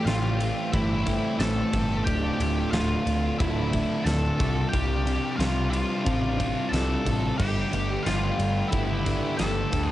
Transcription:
Already playing: string section G3 A3 C4 G4
0.05 picked electric bass A1, distorted electric guitar A2 E3 A3, lead electric guitar F4 F5, snare, ride
0.40 distorted electric guitar A2 E3 A3, ride
0.72 picked electric bass G1, distorted electric guitar A2 E3 A3, lead electric guitar E4 E5, kick, ride
1.06 distorted electric guitar A2 E3 A3, kick, snare, ride
1.39 picked electric bass A1, distorted electric guitar A2 E3 A3, lead electric guitar A4 A5, snare, ride
1.73 picked electric bass G1, distorted electric guitar A2 E3 A3, kick, ride
2.04 picked electric bass D1, distorted electric guitar D2 A2 D3, string section D3 F3 D4, lead electric guitar G4 G5, kick, ride
2.40 picked electric bass D1, distorted electric guitar D2 A2 D3, ride
2.71 picked electric bass D1, distorted electric guitar D2 A2 D3, lead electric guitar F4 F5, snare, ride
3.05 picked electric bass D1, distorted electric guitar D2 A2 D3, ride
3.39 picked electric bass D1, distorted electric guitar D2 A2 D3, lead electric guitar E4 E5, kick, ride
3.72 distorted electric guitar D2 A2 D3, kick, ride
4.04 picked electric bass D1, distorted electric guitar D2 A2 D3, lead electric guitar A4 A5, snare, ride
4.39 picked electric bass C2, distorted electric guitar C3 G3 C4, string section C3 G3, kick, ride
4.69 distorted electric guitar C3 G3, lead electric guitar G4 G5
4.73 picked electric bass C2, distorted electric guitar C4, kick, ride
5.05 distorted electric guitar C3 G3 C4, ride
5.37 picked electric bass C2, distorted electric guitar C3 G3 C4, lead electric guitar F4 F5, ride
5.41 snare
5.70 distorted electric guitar C3 G3 C4, lead electric guitar F4 F5, ride
6.05 picked electric bass A1, distorted electric guitar C3 G3 C4, kick, ride
6.38 distorted electric guitar C3 G3 C4, lead electric guitar E5, kick, ride
6.69 picked electric bass C2, distorted electric guitar C3 G3 C4, lead electric guitar A4 A5
6.73 snare, ride
7.04 picked electric bass A1, distorted electric guitar C3 G3 C4, kick, ride
7.38 picked electric bass G1, distorted electric guitar G2 D3 G3, string section D3 A3 B3 G4, lead electric guitar G4 G5, kick, crash
7.71 picked electric bass G1, distorted electric guitar G2 D3 G3, ride
8.03 distorted electric guitar G2 D3 G3, lead electric guitar F4 F5, ride
8.07 picked electric bass G1, snare
8.39 picked electric bass G1, distorted electric guitar G2 D3 G3, ride
8.68 distorted electric guitar G2 D3 G3, lead electric guitar E4 E5
8.72 picked electric bass G1, kick, ride
9.04 distorted electric guitar G2 D3 G3, kick, snare, ride
9.37 picked electric bass G1, distorted electric guitar G2 D3 G3, lead electric guitar A4 A5, snare, ride
9.72 picked electric bass D2, distorted electric guitar G2 D3 G3, kick, ride

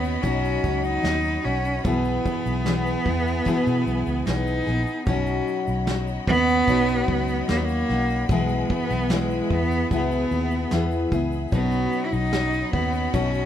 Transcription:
Already playing: fingered electric bass D#2, cello B3, steel-string acoustic guitar C#4 D#4 F#4, string section F#4 C#5 D#5 B5
0.04 shaker
0.22 fingered electric bass B1, steel-string acoustic guitar B2 F#3 C#4 D#4 F#4, cello C#4, kick, shaker
0.45 shaker
0.64 fingered electric bass C#2, kick, shaker
0.83 cello D#4, shaker
1.02 fingered electric bass D#2, steel-string acoustic guitar F#3 C#4 D#4 F#4, snare, shaker
1.24 shaker
1.43 fingered electric bass B1, cello C#4, steel-string acoustic guitar C#4 D#4 F#4
1.65 shaker
1.84 fingered electric bass B1, steel-string acoustic guitar B2 E3 B3 E4 G#4, cello B3, string section G#4 B4 G#5, kick, shaker
2.04 shaker
2.26 kick, shaker
2.46 fingered electric bass B1, shaker
2.64 steel-string acoustic guitar E3 B3 E4 G#4, snare, shaker
2.86 shaker
3.05 fingered electric bass E2, steel-string acoustic guitar B3 E4 G#4, kick
3.27 shaker
3.45 steel-string acoustic guitar B2 E3 B3 E4 G#4, kick, shaker
3.67 fingered electric bass B2, shaker
3.86 fingered electric bass B1, shaker
4.06 fingered electric bass C#2, shaker
4.26 fingered electric bass B1, steel-string acoustic guitar E3 B3 G#4, cello D#4, snare, shaker
4.47 shaker
4.66 fingered electric bass A#1, steel-string acoustic guitar B3 G#4, snare
4.87 shaker
5.06 fingered electric bass B1, steel-string acoustic guitar B2 F#3 C#4 D#4 F#4, cello C#4, string section F#4 C#5 D#5 B5, kick, shaker
5.26 shaker
5.48 shaker
5.67 fingered electric bass B1, shaker
5.87 steel-string acoustic guitar F#3 C#4 D#4 F#4, snare, shaker
6.07 shaker
6.27 fingered electric bass D#2, cello B3, steel-string acoustic guitar C#4 D#4 F#4, kick
6.48 shaker
6.67 fingered electric bass B1, steel-string acoustic guitar B2 F#3 C#4 D#4 F#4, kick, shaker
6.88 shaker
7.08 fingered electric bass C#2, kick
7.28 shaker
7.48 fingered electric bass D#2, steel-string acoustic guitar F#3 C#4 D#4 F#4, cello A#3, snare, shaker
7.57 cello B3
7.64 cello A#3
7.69 shaker
7.89 fingered electric bass B1, steel-string acoustic guitar C#4 D#4 F#4, snare
8.10 shaker
8.29 fingered electric bass B1, steel-string acoustic guitar B2 E3 B3 E4 G#4, cello G#3, string section G#4 B4 E5, kick, shaker
8.49 shaker
8.70 cello B3, kick
8.90 fingered electric bass B1, shaker
9.10 steel-string acoustic guitar E3 B3 E4 G#4, cello G#3, snare, shaker
9.30 shaker
9.50 fingered electric bass E2, cello B3, kick
9.71 shaker
9.91 fingered electric bass C#2, steel-string acoustic guitar B2 B3 E4 G#4, cello B3, kick, shaker
10.11 shaker
10.31 fingered electric bass D#2, shaker
10.51 shaker
10.71 fingered electric bass E2, steel-string acoustic guitar E3 B3 E4 G#4, snare, shaker
10.91 shaker
11.12 fingered electric bass C#2, steel-string acoustic guitar B3 E4 G#4, kick, shaker
11.32 shaker
11.52 fingered electric bass B1, steel-string acoustic guitar B2 F#3 C#4 D#4 F#4, cello B3, string section F#4 C#5 D#5 B5, kick, shaker
11.71 shaker
11.93 shaker
12.06 cello E4
12.13 fingered electric bass B1, cello D#4, shaker
12.33 steel-string acoustic guitar F#3 C#4 D#4 F#4, snare, shaker
12.53 shaker
12.73 fingered electric bass D#2, cello B3, steel-string acoustic guitar C#4 D#4 F#4, kick
12.93 shaker
13.13 fingered electric bass B1, steel-string acoustic guitar B2 F#3 C#4 D#4 F#4, cello C#4, kick, shaker
13.34 shaker

